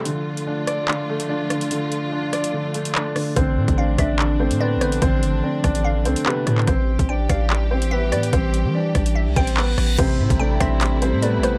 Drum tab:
CC |----------------|----------------|----------------|----------------|
HH |x--x--x----x--xx|x-x---xx--xx--o-|x--x--x----x--xx|x-x---xx--xx--x-|
CP |--------x-------|------------x---|--------x-------|------------x--x|
SD |------r-------r-|------r-------r-|------r-------r-|------r-------r-|
BD |----------------|----------------|o--o--o---------|o-----o---------|

CC |----------------|----------------|x---------------|
HH |x--x--x----x--xx|x-x---xx--xx--o-|x--x--x-x-x-x-x-|
CP |--------x-------|------------x---|--------x-------|
SD |------r-------r-|------r-------r-|------r-------r-|
BD |o--o--o---------|o-----o---o-----|o--o--o---------|